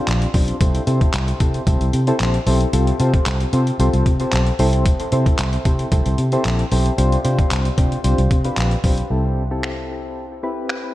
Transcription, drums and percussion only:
0.08 clap, closed hi-hat
0.22 closed hi-hat
0.34 kick, open hi-hat
0.48 closed hi-hat
0.61 kick, closed hi-hat
0.75 closed hi-hat
0.87 closed hi-hat
1.01 kick, closed hi-hat
1.13 clap, closed hi-hat
1.28 closed hi-hat
1.40 kick, closed hi-hat
1.54 closed hi-hat
1.67 kick, closed hi-hat
1.81 closed hi-hat
1.93 closed hi-hat
2.07 closed hi-hat
2.20 clap, closed hi-hat
2.34 closed hi-hat
2.47 open hi-hat
2.61 closed hi-hat
2.73 closed hi-hat
2.87 closed hi-hat
3.00 closed hi-hat
3.14 kick, closed hi-hat
3.26 clap, closed hi-hat
3.40 closed hi-hat
3.53 closed hi-hat
3.67 closed hi-hat
3.80 closed hi-hat
3.94 closed hi-hat
4.06 kick, closed hi-hat
4.20 closed hi-hat
4.32 clap, closed hi-hat
4.47 closed hi-hat
4.59 open hi-hat
4.73 closed hi-hat
4.86 kick, closed hi-hat
5.00 closed hi-hat
5.12 closed hi-hat
5.26 kick, closed hi-hat
5.39 clap, closed hi-hat
5.53 closed hi-hat
5.65 kick, closed hi-hat
5.79 closed hi-hat
5.92 kick, closed hi-hat
6.06 closed hi-hat
6.18 closed hi-hat
6.32 closed hi-hat
6.45 clap, closed hi-hat
6.59 closed hi-hat
6.72 open hi-hat
6.86 closed hi-hat
6.98 closed hi-hat
7.12 closed hi-hat
7.25 closed hi-hat
7.39 kick, closed hi-hat
7.51 clap, closed hi-hat
7.65 closed hi-hat
7.78 kick, closed hi-hat
7.92 closed hi-hat
8.04 closed hi-hat
8.18 closed hi-hat
8.31 kick, closed hi-hat
8.45 closed hi-hat
8.57 clap, closed hi-hat
8.71 closed hi-hat
8.84 kick, open hi-hat
8.98 closed hi-hat
9.63 finger snap
10.69 finger snap

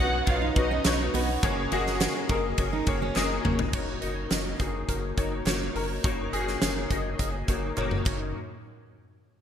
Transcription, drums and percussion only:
0.27 kick, ride
0.56 kick, ride
0.85 snare, clap, ride
1.15 open hi-hat, ride
1.43 kick, hi-hat pedal, ride
1.72 ride
1.87 snare
2.01 snare, clap, ride
2.29 kick, ride
2.58 kick, ride
2.87 kick, ride
3.16 snare, clap
3.45 mid tom
3.59 floor tom
3.73 kick, crash
4.02 closed hi-hat
4.31 snare, clap, closed hi-hat
4.59 kick, closed hi-hat
4.89 kick, closed hi-hat
5.17 kick, closed hi-hat
5.46 snare, clap, closed hi-hat
5.75 open hi-hat
6.04 kick, closed hi-hat
6.33 closed hi-hat
6.48 snare
6.62 snare, clap, closed hi-hat
6.90 kick, closed hi-hat
7.19 kick, closed hi-hat
7.48 kick, closed hi-hat
7.77 clap, high tom
7.91 mid tom
8.06 kick, clap, crash

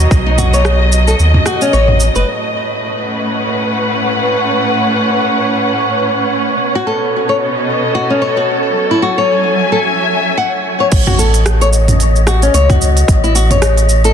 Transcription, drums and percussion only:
0.11 kick, cabasa
0.38 mid tom, cabasa
0.54 cabasa
0.65 cross-stick, cabasa
0.92 cabasa
1.08 cabasa
1.19 cabasa
1.34 mid tom
1.46 cross-stick, cabasa
1.61 cabasa
1.73 cabasa
1.88 mid tom
2.00 cabasa
2.15 cabasa
10.92 kick, open hi-hat, crash, cabasa
11.07 mid tom, cabasa
11.19 cabasa
11.34 open hi-hat, cabasa
11.46 cross-stick, open hi-hat, cabasa
11.61 open hi-hat, cabasa
11.73 cabasa
11.88 mid tom, open hi-hat, cabasa
12.00 open hi-hat, cabasa
12.16 cabasa
12.27 cross-stick, cabasa
12.42 open hi-hat, cabasa
12.54 open hi-hat, cabasa
12.70 kick, mid tom, open hi-hat, cabasa
12.82 cabasa
12.97 open hi-hat, cabasa
13.08 kick, open hi-hat, cabasa
13.24 cabasa
13.36 cabasa
13.51 mid tom, open hi-hat, cabasa
13.62 cross-stick, open hi-hat, cabasa
13.78 open hi-hat, cabasa
13.89 cabasa
14.04 open hi-hat, cabasa

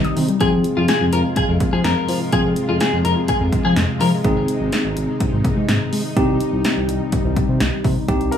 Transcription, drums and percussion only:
0.04 closed hi-hat
0.17 open hi-hat
0.28 closed hi-hat
0.41 kick, closed hi-hat
0.64 closed hi-hat
0.88 snare, closed hi-hat
1.13 closed hi-hat
1.36 kick, closed hi-hat
1.60 kick, closed hi-hat
1.84 snare, closed hi-hat
2.09 open hi-hat
2.32 kick, closed hi-hat
2.56 closed hi-hat
2.80 snare, closed hi-hat
3.05 closed hi-hat
3.28 kick, closed hi-hat
3.52 kick, closed hi-hat
3.76 snare, closed hi-hat
4.01 open hi-hat
4.24 kick, closed hi-hat
4.48 closed hi-hat
4.72 snare, closed hi-hat
4.97 closed hi-hat
5.20 kick, closed hi-hat
5.45 kick, closed hi-hat
5.69 snare, closed hi-hat
5.93 open hi-hat
6.17 kick, closed hi-hat
6.41 closed hi-hat
6.65 snare, closed hi-hat
6.89 closed hi-hat
7.12 kick, closed hi-hat
7.37 kick, closed hi-hat
7.60 snare, closed hi-hat
7.84 kick, open hi-hat
8.08 kick, closed hi-hat
8.21 closed hi-hat
8.32 closed hi-hat

